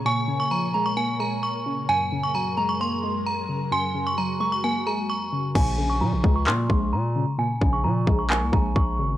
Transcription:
<<
  \new Staff \with { instrumentName = "Synth bell" } { \time 4/4 \key bes \minor \tempo 4 = 131 des'''4. bes''8 r2 | aes''4. bes''8 r2 | c'''4. des'''8 r2 | r1 |
r1 | }
  \new Staff \with { instrumentName = "Synth bell" } { \time 4/4 \key bes \minor aes''8. des'''16 bes''8. des'''16 aes''8 bes''8 des'''4 | aes''8. des'''16 bes''8. des'''16 c'''4 bes''8 r8 | aes''8. des'''16 bes''8. des'''16 aes''8 bes''8 des'''4 | aes''8. des'''16 bes''8. des'''16 c'''4 bes''8 r8 |
aes''8. des'''16 bes''8. des'''16 aes''8 bes''8 des'''4 | }
  \new Staff \with { instrumentName = "Ambient pad" } { \time 4/4 \key bes \minor << { <bes, bes des''>1 | <ges, ges bes'>1~ | <ges, ges bes'>1 | r1 |
r1 | } \\ { bes'1 | aes'1 | ges'1 | r1 |
r1 | } >> }
  \new Staff \with { instrumentName = "Synth pluck" } { \clef bass \time 4/4 \key bes \minor <bes, des aes bes>8 des8 f8 aes8 bes8 aes4 des8 | ges,8 des8 ges8 aes8 bes8 aes4 des8 | ges,8 des8 ges8 aes8 bes8 aes4 des8 | bes,8 des8 f8 aes8 bes8 aes4 des8 |
bes,8 des8 f8 aes8 bes8 aes4 des8 | }
  \new Staff \with { instrumentName = "808-style bass" } { \clef bass \time 4/4 \key bes \minor r1 | r1 | r1 | bes,,4 bes,16 bes,,16 des,8 bes,8 bes,,8 bes,8. r16 |
r8 bes,,8 bes,8 bes,,8. c,16 bes,,8 bes,,8 aes,,8 | }
  \new DrumStaff \with { instrumentName = "Drums" } \drummode { \time 4/4 r4 r4 r4 r4 | r4 r4 r4 r4 | r4 r4 r4 r4 | <cymc bd>4 r8 bd8 hc8 bd8 r4 |
r8 bd8 r8 bd8 hc8 bd8 bd4 | }
>>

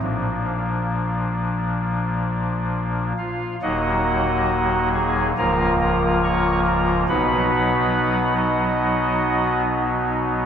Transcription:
<<
  \new Staff \with { instrumentName = "Pipe organ" } { \time 4/4 \key ees \minor \tempo 4 = 69 r2. r8 <f' f''>8 | <ges' ees'' ges''>4. <aes' aes''>8 <bes' f'' bes''>8 <bes' bes''>8 <des'' bes'' des'''>8 <bes' bes''>8 | <b' fis'' b''>4. <fis' dis'' fis''>4. r4 | }
  \new Staff \with { instrumentName = "Pipe organ" } { \clef bass \time 4/4 \key ees \minor <bes,, bes, f bes d'>2.~ <bes,, bes, f bes d'>8 r8 | <ees,, ees, ges bes ees'>2 <des,, des, f bes f'>2 | <b,, b, fis b dis'>1 | }
>>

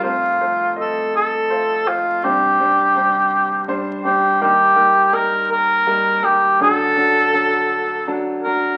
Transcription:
<<
  \new Staff \with { instrumentName = "Cor anglais" } { \time 6/8 \key f \mixolydian \tempo 4. = 55 f'4 a'8 a'4 f'8 | g'2 r8 g'8 | g'4 bes'8 bes'4 g'8 | a'2 r8 bes'8 | }
  \new Staff \with { instrumentName = "Upright piano" } { \time 6/8 \key f \mixolydian <a f' c''>8 <a f' c''>8 <a f' ees''>4 <a f' c''>8 <a f' c''>8 | <g d' c''>8 <g d' c''>8 <g d' c''>4 <g d' c''>8 <g d' c''>8 | <g ees' bes'>8 <g ees' bes'>8 <g ees' bes'>4 <g ees' bes'>8 <g ees' bes'>8 | <fis d' a'>8 <fis d' a'>8 <fis d' a'>4 <fis d' a'>8 <fis d' fis'>8 | }
  \new Staff \with { instrumentName = "Upright piano" } { \clef bass \time 6/8 \key f \mixolydian <f,, f,>2. | <c, c>2. | <ees, ees>2. | <d, d>2. | }
>>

